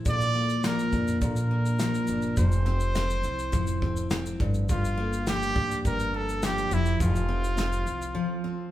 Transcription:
Already playing: steel-string acoustic guitar F3 C4 E4
0.05 upright bass A#1, steel-string acoustic guitar A#2, kick, shaker
0.09 trumpet D5
0.21 shaker
0.35 steel-string acoustic guitar A#3
0.49 shaker
0.64 steel-string acoustic guitar F3, trumpet A#4, snare, shaker
0.79 shaker
0.93 upright bass F2, steel-string acoustic guitar D4, kick, shaker
1.08 shaker
1.21 upright bass A#1, steel-string acoustic guitar A#2, trumpet A#4, kick, shaker
1.36 shaker
1.51 steel-string acoustic guitar A#3
1.66 shaker
1.79 steel-string acoustic guitar F3, snare, shaker
1.94 shaker
2.07 upright bass G1, steel-string acoustic guitar D4, shaker
2.22 shaker
2.37 upright bass F1, steel-string acoustic guitar F3, trumpet C5, kick, shaker
2.52 shaker
2.66 steel-string acoustic guitar C4, snare
2.80 shaker
2.95 steel-string acoustic guitar C4, snare, shaker
3.10 shaker
3.24 upright bass C2, steel-string acoustic guitar E4, shaker
3.39 shaker
3.52 upright bass F1, steel-string acoustic guitar F3, kick, shaker
3.67 shaker
3.82 steel-string acoustic guitar C4, kick
3.97 shaker
4.10 steel-string acoustic guitar C4, snare, shaker
4.26 shaker
4.40 upright bass G1, steel-string acoustic guitar G2, kick
4.54 shaker
4.69 steel-string acoustic guitar G2, trumpet F4, kick, shaker
4.85 shaker
4.97 steel-string acoustic guitar A#3
5.13 shaker
5.27 steel-string acoustic guitar F3, trumpet G4, snare, shaker
5.42 shaker
5.56 upright bass D2, steel-string acoustic guitar D4, kick
5.71 shaker
5.85 upright bass G1, steel-string acoustic guitar G2, trumpet A#4, kick, shaker
6.00 shaker
6.14 steel-string acoustic guitar A#3, trumpet A4
6.29 shaker
6.43 steel-string acoustic guitar F3, trumpet G4, snare, shaker
6.58 shaker
6.71 upright bass F1, steel-string acoustic guitar F3, trumpet E4, shaker
6.86 shaker
7.00 upright bass F1, steel-string acoustic guitar F3, trumpet F4, kick, shaker
7.16 shaker
7.29 steel-string acoustic guitar C4
7.44 shaker
7.57 steel-string acoustic guitar C4, snare, shaker
7.73 shaker
7.86 upright bass C2, shaker
8.02 shaker
8.15 steel-string acoustic guitar F3
8.44 steel-string acoustic guitar C4

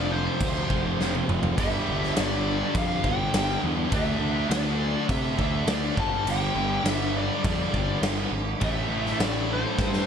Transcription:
Already playing: picked electric bass F1, distorted electric guitar F2 C3 F3, lead electric guitar D5
0.12 lead electric guitar C5
0.41 picked electric bass D2, kick, crash
0.70 picked electric bass F1, distorted electric guitar F2 C3 F3, kick
1.00 picked electric bass F1, distorted electric guitar F2 C3 F3, snare
1.15 high tom
1.29 picked electric bass F1, mid tom
1.43 floor tom
1.57 picked electric bass G1, distorted electric guitar G2 D3 G3, lead electric guitar E5, kick, crash
1.89 picked electric bass G1
2.03 snare
2.16 picked electric bass G1, lead electric guitar D5, snare, crash
2.75 picked electric bass F2, lead electric guitar F5, kick, crash
3.03 picked electric bass G1, distorted electric guitar G2 D3 G3, kick
3.08 lead electric guitar G5
3.34 picked electric bass G1, distorted electric guitar G2 D3 G3, snare, crash
3.64 picked electric bass E2
3.90 picked electric bass D2, distorted electric guitar D3 A3 D4, lead electric guitar E5, kick, crash
4.20 picked electric bass D2
4.49 picked electric bass D2, lead electric guitar D5, snare, crash
5.09 picked electric bass C3, lead electric guitar E5, kick, crash
5.38 picked electric bass D2, distorted electric guitar D3 A3 D4, lead electric guitar E5, kick
5.67 picked electric bass D2, distorted electric guitar D3 A3 D4, lead electric guitar D5, snare, crash
5.95 picked electric bass G1, distorted electric guitar G2 D3 G3, kick
6.00 lead electric guitar A5
6.25 picked electric bass G1, crash
6.30 lead electric guitar G5
6.55 picked electric bass G1
6.84 picked electric bass G1, snare, crash
6.88 lead electric guitar E5
7.17 lead electric guitar D5
7.44 picked electric bass F2, distorted electric guitar G2 D3 G3, lead electric guitar D5, kick, crash
7.74 picked electric bass G1, distorted electric guitar G2 D3 G3, kick
8.02 picked electric bass G1, snare, crash
8.31 picked electric bass G#1
8.61 picked electric bass A1, distorted electric guitar A2 E3, lead electric guitar E5, kick, crash
8.66 distorted electric guitar A3
8.89 picked electric bass A1
9.06 snare
9.20 picked electric bass A1, lead electric guitar D5, snare, crash
9.53 lead electric guitar C5
9.79 picked electric bass G2, kick, snare
9.93 snare

